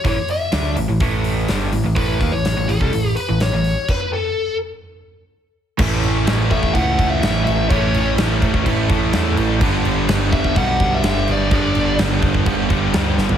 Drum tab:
CC |----------------|----------------|x---------------|x-x-x-x-x-x-x-x-|
HH |o-o-o-o-o-o-o-o-|o-o-o-o-o-o-o-o-|----------------|----------------|
SD |----o-------o---|----o-------o---|----------------|----o-------o---|
FT |----------------|----------------|----------------|----------------|
BD |o-------o-------|o-o----o--------|o---------------|o-----ooo-o-----|

CC |x-x-x-x-x-x-x-x-|x-x-x-x-x-x-x-x-|x-x-x-x-x-x-x---|
HH |----------------|----------------|----------------|
SD |----o-------o---|----o-------o---|----o-------o-o-|
FT |----------------|----------------|---------------o|
BD |o-----ooo-o-----|o-----ooo-o-----|o-----ooo-o-----|